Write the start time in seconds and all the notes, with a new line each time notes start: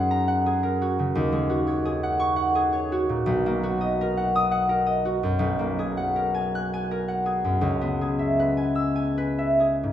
Already playing: F#2 G#3 F#4 G#4 A#4 F#5
0.11 A#5
0.28 F#5
0.46 G#4
0.63 A#4
0.82 F#4
0.99 C#3
1.15 D#2
1.32 G#3
1.50 F#4
1.67 C#5
1.85 G#4
2.03 F#5
2.20 C#6
2.36 F#5
2.55 G#4
2.73 C#5
2.92 F#4
3.09 A#2
3.26 B1
3.46 A#3
3.63 F#4
3.81 D#5
4.01 A#4
4.17 F#5
4.35 D#6
4.51 F#5
4.69 A#4
4.86 D#5
5.05 F#4
5.23 F#2
5.39 B1
5.59 A#3
5.79 G#4
5.97 F#5
6.16 A#4
6.34 G#5
6.55 F#6
6.74 G#5
6.91 A#4
7.08 F#5
7.26 G#4
7.44 F#2
7.61 C#2
7.81 B3
8.01 G#4
8.19 E5
8.39 B4
8.57 G#5
8.75 E6
8.96 G#5
9.18 B4
9.38 E5
9.60 G#4
9.83 G#2